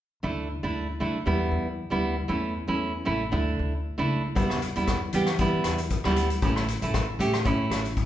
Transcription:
0.23 upright bass D2, nylon-string guitar A3 D4 E4
0.63 upright bass D2, nylon-string guitar A3 D4 E4
1.00 upright bass D3, nylon-string guitar A3 D4 E4
1.26 upright bass E2, nylon-string guitar G3 B3 E4
1.52 upright bass E2
1.90 upright bass D2, nylon-string guitar G3 B3 E4
2.28 upright bass E2, nylon-string guitar A3 C#4 E4
2.68 upright bass E2, nylon-string guitar A3 C#4 E4
3.05 upright bass A1, nylon-string guitar A3 C#4 E4
3.32 upright bass D2, nylon-string guitar A3 D4 E4
3.59 upright bass D2
3.98 upright bass C#2, nylon-string guitar A3 D4 E4
4.35 upright bass E2, nylon-string guitar G3 B3 E4, kick, closed hi-hat
4.50 cross-stick
4.62 closed hi-hat
4.75 upright bass E2, nylon-string guitar G3 B3 E4, closed hi-hat
4.87 kick, cross-stick, closed hi-hat
5.13 upright bass E3, nylon-string guitar G3 B3 G4, closed hi-hat
5.27 cross-stick, closed hi-hat
5.38 nylon-string guitar G3 B3 E4, kick, closed hi-hat
5.64 upright bass E2, cross-stick, closed hi-hat
5.78 closed hi-hat
5.90 kick, closed hi-hat
6.04 upright bass D2, nylon-string guitar G3 B3 E4, cross-stick
6.16 closed hi-hat
6.30 closed hi-hat
6.42 upright bass A1, nylon-string guitar A3 C#4 E4, kick, closed hi-hat
6.56 cross-stick
6.68 closed hi-hat
6.82 upright bass A1, nylon-string guitar A3 C#4 E4, closed hi-hat
6.94 kick, cross-stick, closed hi-hat
7.19 upright bass A2, nylon-string guitar A3 C#4 G4, closed hi-hat
7.34 cross-stick, closed hi-hat
7.45 nylon-string guitar A3 C#4 E4, kick, closed hi-hat
7.70 upright bass A1, cross-stick, closed hi-hat
7.85 closed hi-hat
7.96 kick, closed hi-hat

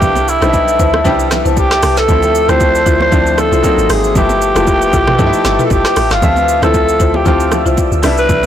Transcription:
Already playing: grand piano G3 B3 D4 E4, alto saxophone G4, ambient pad B4 E5 A5
0.02 log drum bass C2, kick, low conga, shaker
0.15 low bongo, shaker
0.28 alto saxophone E4, shaker
0.41 log drum bass B1, grand piano G3 B3 D4 D#4, marimba E4 B4 C5, cross-stick, shaker
0.49 grand piano E4
0.53 kick, high bongo, shaker
0.68 shaker
0.79 log drum bass D2, marimba E4 B4 C5, kick, shaker
0.94 cross-stick, low bongo
1.04 log drum bass C2, grand piano G3 B3 D4 G4, marimba E4 B4 C5, kick, low conga, shaker
1.19 shaker
1.31 cross-stick, snare, low bongo, low conga, shaker
1.45 log drum bass C2, marimba E4 B4 C5, high bongo, shaker
1.56 alto saxophone G4, kick, high bongo, shaker
1.71 cross-stick, snare, shaker
1.83 log drum bass C2, cross-stick, open hi-hat, shaker
1.97 alto saxophone A4, snare, shaker
2.08 log drum bass D2, grand piano F3 A3 C4 E4, ambient pad F3 C6, kick, low conga, shaker
2.22 low bongo, shaker
2.35 shaker
2.48 log drum bass D2, grand piano F3 A3 C4 G4, marimba E4 F4 C5, alto saxophone C5, cross-stick, shaker
2.60 kick, high bongo, shaker
2.75 shaker
2.86 log drum bass D2, marimba E4 F4 C5, kick, shaker
3.00 alto saxophone C5, low bongo
3.11 log drum bass D2, grand piano F3 A3 C4 D4, marimba E4 F4 C5, kick, low conga, shaker
3.27 shaker
3.38 alto saxophone A4, cross-stick, low bongo, low conga, shaker
3.52 log drum bass C2, marimba E4 F4 C5, high bongo, shaker
3.63 grand piano F#3 A#3 C4 D#4, kick, high bongo, shaker
3.78 log drum bass G#1, shaker
3.90 log drum bass G#1, alto saxophone G#4, cross-stick, open hi-hat, shaker
4.04 shaker
4.14 log drum bass G1, grand piano F3 A3 B3 E4, alto saxophone G4, ambient pad B4 E5 A5 E6, kick, low conga, shaker
4.29 low bongo, shaker
4.42 shaker
4.55 log drum bass F1, grand piano F3 A3 A#3 E4, marimba E4 F4 A4 B4, cross-stick, shaker
4.62 grand piano B3
4.67 kick, high bongo, shaker
4.82 shaker
4.93 log drum bass A1, marimba E4 F4 A4 B4, kick, shaker
5.07 cross-stick, mid tom, low bongo
5.18 log drum bass G2, grand piano F3 A3 B3 D#4, marimba E4 F4 A4 B4, kick, low conga, shaker
5.26 grand piano E4
5.33 shaker
5.45 log drum bass G1, cross-stick, snare, low bongo, low conga, shaker
5.59 marimba E4 F4 A4 B4, mid tom, high bongo, shaker
5.66 alto saxophone A4
5.70 log drum bass G1, alto saxophone G4, kick, high bongo, shaker
5.85 cross-stick, snare, shaker
5.96 log drum bass A1, cross-stick, open hi-hat, high bongo, shaker
6.11 log drum bass G1, alto saxophone F4, cross-stick, snare, shaker
6.21 log drum bass D2, grand piano F3 A3 C4 E5, ambient pad D5 E5 E6, kick, low conga, shaker
6.36 low bongo, shaker
6.49 shaker
6.62 log drum bass D2, grand piano F3 A3 C4 E4, marimba E4 F4 C5, alto saxophone A4, cross-stick, shaker
6.74 kick, high bongo, shaker
6.89 shaker
7.00 log drum bass D2, marimba E4 F4 C5, kick, shaker
7.14 alto saxophone G4, low bongo
7.25 log drum bass D2, grand piano F3 A3 C4 F4, marimba E4 F4 C5, alto saxophone G4, kick, low conga, shaker
7.40 shaker
7.52 cross-stick, low bongo, low conga, shaker
7.66 log drum bass C2, marimba E4 F4 C5, high bongo, shaker
7.77 kick, high bongo, shaker
7.92 log drum bass D2, shaker
8.02 log drum bass C2, grand piano G3 B3 D4 E4, ambient pad B5, cross-stick, open hi-hat, shaker
8.18 alto saxophone B4, shaker
8.29 log drum bass C2, kick, low conga, shaker

